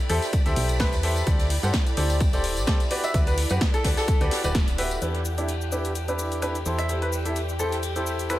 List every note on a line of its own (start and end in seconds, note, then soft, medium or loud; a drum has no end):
0.00 8.39 E4 medium
0.00 8.39 A4 medium
0.00 5.03 D5 medium
0.00 8.39 D5 medium
0.00 2.91 G5 medium
0.00 5.03 B5 medium
0.09 0.19 E2 medium
0.09 0.28 G4 medium
0.09 0.23 A4 medium
0.09 0.28 A4 medium
0.09 0.28 C5 medium
0.09 0.28 E5 medium
0.09 open hi-hat loud
0.09 ride medium
0.22 snare soft
0.22 open hi-hat medium
0.22 tambourine medium
0.33 kick loud
0.33 closed hi-hat medium
0.33 ride medium
0.33 tambourine medium
0.46 0.54 D2 medium
0.46 0.77 G4 medium
0.46 0.77 A4 medium
0.46 0.77 C5 medium
0.46 0.77 E5 medium
0.46 closed hi-hat soft
0.46 tambourine soft
0.56 0.94 B1 loud
0.56 open hi-hat loud
0.56 ride medium
0.69 closed hi-hat soft
0.69 tambourine medium
0.79 0.92 G4 medium
0.79 0.92 A4 medium
0.79 1.27 B4 medium
0.79 0.92 C5 medium
0.79 0.92 E5 loud
0.79 kick loud
0.79 snare loud
0.79 closed hi-hat medium
0.79 open hi-hat medium
0.79 tambourine medium
0.93 1.23 E2 loud
0.93 snare medium
0.93 closed hi-hat soft
0.93 tambourine soft
1.03 1.22 G4 medium
1.03 1.22 A4 medium
1.03 1.22 C5 medium
1.03 1.22 E5 medium
1.03 open hi-hat loud
1.03 ride medium
1.16 closed hi-hat soft
1.16 ride soft
1.16 tambourine medium
1.27 1.58 D2 loud
1.27 1.45 G4 medium
1.27 1.45 A4 medium
1.27 1.45 C5 medium
1.27 1.45 D5 medium
1.27 kick loud
1.27 closed hi-hat medium
1.27 ride medium
1.27 tambourine medium
1.39 snare soft
1.39 closed hi-hat soft
1.39 tambourine soft
1.50 open hi-hat loud
1.50 ride medium
1.63 1.71 G2 medium
1.63 1.73 G4 medium
1.63 1.73 A4 medium
1.63 1.73 C5 medium
1.63 1.73 F#5 medium
1.63 closed hi-hat soft
1.63 ride soft
1.63 tambourine medium
1.73 kick loud
1.73 snare loud
1.73 closed hi-hat medium
1.73 ride medium
1.73 tambourine medium
1.86 closed hi-hat soft
1.86 tambourine soft
1.97 2.35 D2 medium
1.97 2.16 G4 medium
1.97 2.16 A4 medium
1.97 2.16 C5 medium
1.97 2.16 D5 medium
1.97 open hi-hat medium
1.97 ride medium
2.10 open hi-hat medium
2.10 tambourine medium
2.20 kick loud
2.20 closed hi-hat medium
2.20 ride medium
2.20 tambourine medium
2.33 2.58 D1 medium
2.33 2.65 G4 medium
2.33 2.65 A4 medium
2.33 2.65 C5 medium
2.33 2.65 D5 loud
2.33 closed hi-hat soft
2.33 tambourine soft
2.44 open hi-hat loud
2.44 ride medium
2.57 2.65 A1 loud
2.57 closed hi-hat soft
2.57 tambourine medium
2.67 2.80 G4 medium
2.67 2.80 A4 medium
2.67 2.80 C5 medium
2.67 2.80 D5 loud
2.67 kick loud
2.67 snare loud
2.67 closed hi-hat medium
2.67 ride medium
2.67 tambourine medium
2.80 closed hi-hat soft
2.80 tambourine soft
2.91 3.09 F#4 medium
2.91 3.09 G4 medium
2.91 3.09 B4 medium
2.91 3.09 D5 loud
2.91 open hi-hat medium
3.04 3.15 E5 medium
3.04 closed hi-hat soft
3.04 tambourine medium
3.14 3.45 D2 loud
3.14 3.33 F#4 medium
3.14 3.33 G4 medium
3.14 3.33 B4 medium
3.14 3.33 D5 medium
3.14 kick loud
3.14 closed hi-hat medium
3.14 ride medium
3.14 tambourine medium
3.27 3.38 B4 medium
3.27 closed hi-hat soft
3.27 tambourine soft
3.32 5.02 F#5 medium
3.38 open hi-hat loud
3.38 ride medium
3.50 3.59 F#2 medium
3.50 3.61 F#4 medium
3.50 3.61 G4 medium
3.50 3.61 B4 medium
3.50 3.61 F#5 medium
3.50 closed hi-hat soft
3.50 tambourine medium
3.61 kick loud
3.61 snare loud
3.61 closed hi-hat medium
3.61 ride medium
3.61 tambourine medium
3.74 3.85 A4 medium
3.74 closed hi-hat soft
3.74 tambourine soft
3.84 3.94 D2 medium
3.84 4.03 F#4 medium
3.84 4.03 G4 medium
3.84 4.03 B4 medium
3.84 4.03 D5 medium
3.84 kick medium
3.84 snare loud
3.84 open hi-hat loud
3.84 ride medium
3.97 4.32 A4 medium
3.97 snare loud
3.97 open hi-hat medium
3.97 ride medium
3.97 tambourine medium
4.07 kick loud
4.07 closed hi-hat medium
4.07 ride medium
4.07 tambourine medium
4.21 4.29 D2 medium
4.21 4.42 F#4 medium
4.21 4.42 G4 medium
4.21 4.42 B4 medium
4.21 4.42 D5 medium
4.21 closed hi-hat soft
4.21 tambourine soft
4.31 snare loud
4.31 open hi-hat loud
4.31 ride medium
4.44 4.98 D1 medium
4.44 4.54 F#4 medium
4.44 4.54 G4 medium
4.44 4.54 B4 medium
4.44 4.55 D5 loud
4.44 closed hi-hat soft
4.44 tambourine medium
4.54 kick loud
4.54 snare loud
4.54 closed hi-hat medium
4.54 ride medium
4.54 tambourine medium
4.68 closed hi-hat soft
4.68 tambourine soft
4.78 4.97 F#4 medium
4.78 4.97 G4 medium
4.78 4.97 B4 medium
4.78 4.97 E5 medium
4.78 open hi-hat loud
4.78 ride medium
4.91 closed hi-hat soft
4.91 ride soft
4.91 tambourine medium
5.02 6.64 E2 medium
5.02 5.20 D4 medium
5.02 5.20 E4 medium
5.02 5.20 G4 medium
5.02 8.39 G4 medium
5.02 5.20 B4 medium
5.02 8.39 G5 medium
5.02 closed hi-hat medium
5.02 ride medium
5.02 shaker soft
5.14 snare soft
5.14 closed hi-hat soft
5.25 ride medium
5.25 shaker medium
5.38 5.48 D4 medium
5.38 5.48 E4 medium
5.38 5.48 G4 medium
5.38 5.48 E5 medium
5.38 closed hi-hat soft
5.38 ride soft
5.38 shaker soft
5.49 closed hi-hat medium
5.49 ride medium
5.49 shaker soft
5.61 shaker soft
5.72 5.91 D4 medium
5.72 5.91 E4 medium
5.72 5.91 G4 medium
5.72 5.91 B4 medium
5.72 8.39 G5 medium
5.72 ride medium
5.72 shaker medium
5.85 closed hi-hat soft
5.85 shaker soft
5.95 closed hi-hat medium
5.95 ride medium
5.95 shaker soft
6.08 6.40 D4 medium
6.08 6.40 E4 medium
6.08 6.40 G4 medium
6.08 6.40 B4 medium
6.08 closed hi-hat soft
6.08 shaker soft
6.19 ride medium
6.19 shaker medium
6.32 closed hi-hat soft
6.32 shaker soft
6.42 6.55 D4 medium
6.42 6.55 E4 medium
6.42 6.55 G4 medium
6.42 6.55 B4 loud
6.42 finger snap medium
6.42 closed hi-hat medium
6.42 ride medium
6.42 shaker soft
6.55 closed hi-hat soft
6.55 shaker soft
6.66 8.39 E2 medium
6.66 6.84 E4 medium
6.66 6.84 G4 medium
6.66 6.84 A4 medium
6.66 6.84 C5 medium
6.66 ride medium
6.66 shaker medium
6.79 6.90 E5 medium
6.79 finger snap medium
6.79 snare soft
6.79 closed hi-hat soft
6.79 shaker soft
6.89 7.08 E4 medium
6.89 7.08 G4 medium
6.89 7.08 A4 medium
6.89 7.08 C5 medium
6.89 closed hi-hat medium
6.89 ride medium
6.89 shaker soft
7.02 7.13 B4 medium
7.02 closed hi-hat soft
7.12 ride medium
7.12 shaker medium
7.25 7.36 E4 medium
7.25 7.36 G4 medium
7.25 7.36 A4 medium
7.25 7.36 E5 medium
7.25 closed hi-hat soft
7.25 shaker soft
7.36 closed hi-hat medium
7.36 ride medium
7.36 shaker soft
7.49 shaker soft
7.59 7.78 E4 medium
7.59 7.78 G4 medium
7.59 7.73 A4 medium
7.59 7.78 A4 medium
7.59 7.78 C5 medium
7.59 ride medium
7.59 shaker medium
7.72 snare soft
7.72 closed hi-hat soft
7.72 shaker soft
7.82 closed hi-hat medium
7.82 ride medium
7.82 shaker soft
7.96 8.27 E4 medium
7.96 8.27 G4 medium
7.96 8.27 A4 medium
7.96 8.27 C5 medium
7.96 closed hi-hat soft
7.96 shaker soft
8.07 ride medium
8.07 shaker medium
8.19 closed hi-hat soft
8.19 shaker soft
8.30 8.39 E4 medium
8.30 8.39 G4 medium
8.30 8.39 A4 medium
8.30 8.39 B4 medium
8.30 8.39 C5 medium
8.30 finger snap medium
8.30 closed hi-hat medium
8.30 open hi-hat medium
8.30 shaker soft